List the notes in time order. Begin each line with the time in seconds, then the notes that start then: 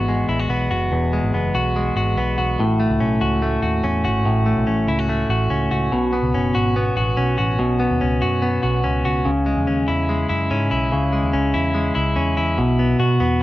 Already playing: G#1 E2 B3 F#4
0.08 G#3
0.29 A1 E4
0.39 F#4
0.49 B1 B3
0.71 F#1 F#4
0.92 E1 E2
1.13 G#3
1.23 G#1
1.34 F#1 B3
1.55 B1 F#4
1.76 G#3
1.96 G#1 F#4
2.17 B1 B3
2.38 B1 F#4
2.59 A1 A2
2.80 A3
2.90 C#2
3.00 B1 C#4
3.21 C#2 F#4
3.42 A3
3.62 D#2 F#4
3.84 E2 C#4
4.05 G#1 F#4
4.25 A1 A2
4.46 A3
4.57 B1
4.67 A1 C#4
4.88 C#2 E4
4.99 F#4
5.09 A3
5.30 A1 F#4
5.50 C#2 C#4
5.71 C#2 F#4
5.92 B1 B2
6.13 B3
6.23 C#2
6.34 F#1 C#4
6.54 G#1 F#4
6.76 B3
6.97 A1 F#4
7.17 B1 C#4
7.38 A1 F#4
7.59 B1 B2
7.80 B3
7.91 D#2
8.01 C#2 C#4
8.22 F#2 F#4
8.42 B3
8.63 B1 F#4
8.84 C#2 C#4
9.05 C#2 F#4
9.25 C#2 C#3
9.46 G#3
9.57 E2
9.67 D#2 C#4
9.88 E2 E4
10.09 G#3
10.29 F#2 E4
10.51 G#2 C#4
10.71 B1 E4
10.92 C#2 C#3
11.13 G#3
11.24 D#2
11.33 C#2 C#4
11.54 E2 E4
11.74 G#3
11.95 C#2 E4
12.16 E2 C#4
12.37 E2 E4
12.58 B1 B2
12.79 B3
13.00 B2 F#4
13.20 E2 B3